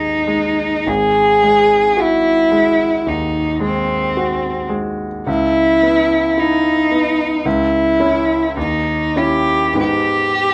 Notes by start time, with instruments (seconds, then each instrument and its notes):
Already playing: grand piano D#2 G#3 G#4, cello D#4
0.27 grand piano G#3
0.87 grand piano G#1, cello G#4
1.43 grand piano G#3
1.97 cello E4, grand piano F#4
2.52 grand piano G#3
3.07 grand piano D#2, cello D#4
3.61 grand piano G#3, cello C4
4.17 grand piano F#4
4.69 grand piano G#3
5.27 grand piano C#2, cello E4
5.83 grand piano B3
6.38 cello D#4, grand piano E4
6.91 grand piano B3
7.45 grand piano C#2, cello E4
8.00 grand piano C#4 E4
8.57 grand piano D#2, cello D#4
9.16 grand piano C#4 E4, cello G4
9.73 grand piano G#2 G#3 B3 D#4
9.80 cello G4